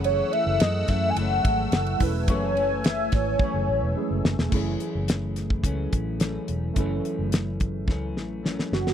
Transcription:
<<
  \new Staff \with { instrumentName = "Analog synth pad" } { \time 4/4 \key fis \dorian \tempo 4 = 107 << { <a e'''>1~ | <a e'''>1 | r1 | r1 | } \\ { fis''2.~ fis''8 gis''8~ | gis''1 | r1 | r1 | } >> }
  \new Staff \with { instrumentName = "Soft synth lead" } { \time 4/4 \key fis \dorian cis''8 e''8 dis''8 e''16. gis''32 fis''4. r8 | cis''4 e''8 cis''2 r8 | r1 | r2. r8 fis'8 | }
  \new Staff \with { instrumentName = "Synth keys" } { \time 4/4 \key fis \dorian <a cis' e' gis'>2.~ <a cis' e' gis'>8 <a cis' e' b'>8~ | <a cis' e' b'>2. <gis a cis' e' gis'>4 | <a cis' e' gis'>1 | <a cis' e' a'>1 | }
  \new Staff \with { instrumentName = "Clean electric guitar" } { \time 4/4 \key fis \dorian <fis, e a cis'>8 <e a cis'>4. <fis, e a cis'>2 | <fis, e a cis'>8 <e a cis'>4. <fis, e a cis'>2 | <fis, e a cis'>2 <fis, e a cis'>4 <fis, e a cis'>4 | <fis, e a cis'>2 <fis, e a cis'>4 <fis, e a cis'>4 | }
  \new Staff \with { instrumentName = "Fingered electric bass" } { \clef bass \time 4/4 \key fis \dorian fis,,8 r16 fis,,16 fis,8 fis,8 fis,,8 gis,,8 fis,,8 e,,8 | fis,,4. gis,,8 r16 fis,,16 a,,16 e,,16 r16 fis,,16 r16 e,,16 | fis,,8 r16 fis,,4~ fis,,16 cis,8 a,,4 e,,8 | fis,,8 r16 fis,,4~ fis,,16 cis,8 a,,4 fis,,8 | }
  \new DrumStaff \with { instrumentName = "Drums" } \drummode { \time 4/4 cymr8 cymr8 <cymr sn>8 <bd cymr sn>8 cymr8 <bd cymr>8 <cymr sn>16 cymr16 <hho bd cymr>8 | <hhp bd cymr>8 cymr8 <cymr sn>8 <bd cymr sn>8 bd4 r8 sn16 sn16 | <cymc bd>8 hh8 <hh sn>8 <hh sn>16 bd16 <hh bd>8 <hh bd>8 <hh sn>8 hh8 | <hh bd>8 hh8 <hh sn>8 <hh bd>8 <bd sn>8 sn8 sn16 sn16 sn16 sn16 | }
>>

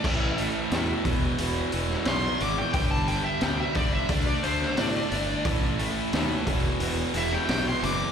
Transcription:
<<
  \new Staff \with { instrumentName = "Lead electric guitar" } { \time 4/4 \key e \dorian \tempo 4 = 89 r2. c'''8 d'''16 g''16 | g''16 a''16 g''16 e''16 g''16 e''16 d''16 e''16 d''16 d''16 c''8 d''4 | r2 r8 e''16 g''8 c'''16 d'''8 | }
  \new Staff \with { instrumentName = "Distorted electric guitar" } { \clef bass \time 4/4 \key e \dorian <a, e a>8 <a, e a>8 <a, e a>8 <e, b, e>8 <e, b, e>8 <e, b, e>8 <e, b, e>8 <e, b, e>8 | <g, d g>8 <g, d g>8 <g, d g>8 <g, d g>8 <d a d'>8 <d a d'>8 <d a d'>8 <d a d'>8 | <a, e a>8 <a, e a>8 <a, e a>8 <e, b, e>8 <e, b, e>8 <e, b, e>8 <e, b, e>8 <e, b, e>8 | }
  \new Staff \with { instrumentName = "Distorted electric guitar" } { \clef bass \time 4/4 \key e \dorian <a, e a>8 <a, e a>8 <a, e a>8 <e, b, e>8 <e, b, e>8 <e, b, e>8 <e, b, e>8 <e, b, e>8 | <g, d g>8 <g, d g>8 <g, d g>8 <g, d g>8 <d a d'>8 <d a d'>8 <d a d'>8 <d a d'>8 | <a, e a>8 <a, e a>8 <a, e a>8 <e, b, e>8 <e, b, e>8 <e, b, e>8 <e, b, e>8 <e, b, e>8 | }
  \new Staff \with { instrumentName = "Fingered electric bass" } { \clef bass \time 4/4 \key e \dorian a,,4 e,8 e,,8 e,,8 e,,8 b,,8 gis,,8 | g,,4 d,8 g,,8 d,8 d,8 a,8 g,,8 | a,,4 dis,8 e,,8 e,,8 e,,8 b,,8 fis,,8 | }
  \new DrumStaff \with { instrumentName = "Drums" } \drummode { \time 4/4 <cymc bd>8 hho8 <hho sn>8 <hho bd>8 hho8 hho16 sn16 <hho sn>8 hho8 | <hho bd>8 hho8 <hho sn>8 <hho bd>8 <hho bd>8 hho16 sn16 <hho sn>8 hho8 | <hho bd>8 hho8 <hho sn>8 <hho bd>8 hho8 hho16 sn16 <hho sn>8 hho8 | }
>>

